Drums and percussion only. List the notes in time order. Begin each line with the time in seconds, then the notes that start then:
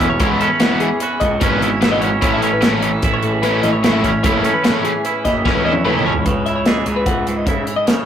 0.00 kick, closed hi-hat
0.20 kick, closed hi-hat
0.41 closed hi-hat
0.60 snare, closed hi-hat
0.80 closed hi-hat
1.00 closed hi-hat
1.21 kick, closed hi-hat
1.41 kick, closed hi-hat
1.62 closed hi-hat
1.82 snare, closed hi-hat
2.02 closed hi-hat
2.22 kick, closed hi-hat
2.42 closed hi-hat
2.62 snare, closed hi-hat
2.83 closed hi-hat
3.02 kick, closed hi-hat
3.23 closed hi-hat
3.43 snare, closed hi-hat
3.63 closed hi-hat
3.84 snare, closed hi-hat
4.04 kick, closed hi-hat
4.24 kick, closed hi-hat
4.44 closed hi-hat
4.64 snare, closed hi-hat
4.85 closed hi-hat
5.05 closed hi-hat
5.25 kick, snare, closed hi-hat
5.46 kick, snare
5.72 high tom
5.85 mid tom
5.99 mid tom
6.13 floor tom
6.26 kick, closed hi-hat
6.46 closed hi-hat
6.66 snare, closed hi-hat
6.86 closed hi-hat
7.06 kick, closed hi-hat
7.27 closed hi-hat
7.47 kick, closed hi-hat
7.67 closed hi-hat
7.87 snare, closed hi-hat